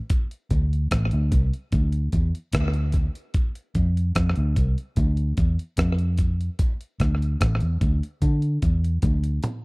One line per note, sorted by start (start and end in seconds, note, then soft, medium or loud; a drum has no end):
0.10 kick loud
0.10 closed hi-hat medium
0.31 closed hi-hat medium
0.50 0.86 D2 medium
0.50 kick loud
0.50 closed hi-hat medium
0.73 closed hi-hat medium
0.91 1.10 A1 medium
0.91 kick medium
0.91 cross-stick loud
0.91 closed hi-hat loud
1.11 1.30 D2 medium
1.11 closed hi-hat medium
1.32 1.50 C2 loud
1.32 kick loud
1.32 closed hi-hat medium
1.54 closed hi-hat medium
1.72 2.08 D2 medium
1.72 kick loud
1.72 closed hi-hat medium
1.92 closed hi-hat medium
2.12 2.31 E2 medium
2.12 kick medium
2.12 closed hi-hat medium
2.35 closed hi-hat medium
2.52 3.07 D2 medium
2.52 kick loud
2.52 cross-stick loud
2.52 closed hi-hat loud
2.74 closed hi-hat medium
2.92 kick medium
2.92 closed hi-hat medium
3.15 closed hi-hat medium
3.34 kick loud
3.34 closed hi-hat medium
3.55 closed hi-hat medium
3.75 4.11 F2 medium
3.75 kick medium
3.75 closed hi-hat medium
3.97 closed hi-hat medium
4.15 4.34 F2 loud
4.15 kick medium
4.15 cross-stick loud
4.15 closed hi-hat loud
4.36 4.54 D2 medium
4.36 closed hi-hat medium
4.56 4.75 C2 medium
4.56 kick medium
4.56 closed hi-hat medium
4.78 closed hi-hat medium
4.96 5.32 D2 loud
4.96 kick loud
4.96 closed hi-hat medium
5.17 closed hi-hat medium
5.37 5.56 E2 medium
5.37 kick loud
5.37 closed hi-hat medium
5.59 closed hi-hat medium
5.77 6.48 F2 loud
5.77 kick loud
5.77 cross-stick loud
5.77 closed hi-hat loud
5.99 closed hi-hat medium
6.17 kick medium
6.17 closed hi-hat medium
6.41 closed hi-hat medium
6.59 kick loud
6.59 closed hi-hat medium
6.81 closed hi-hat medium
7.00 7.35 D2 medium
7.00 kick medium
7.00 cross-stick medium
7.00 closed hi-hat medium
7.22 closed hi-hat medium
7.41 7.59 A1 loud
7.41 kick medium
7.41 cross-stick loud
7.41 closed hi-hat loud
7.60 7.78 E2 medium
7.60 closed hi-hat medium
7.81 8.00 D2 medium
7.81 kick loud
7.81 closed hi-hat medium
8.03 closed hi-hat medium
8.22 8.57 D3 loud
8.22 kick loud
8.22 closed hi-hat medium
8.42 closed hi-hat medium
8.62 8.98 E2 loud
8.62 kick loud
8.62 closed hi-hat medium
8.84 closed hi-hat medium
9.02 9.38 D2 medium
9.02 kick loud
9.02 closed hi-hat loud
9.02 high tom medium
9.24 closed hi-hat medium
9.43 closed hi-hat medium
9.43 mid tom loud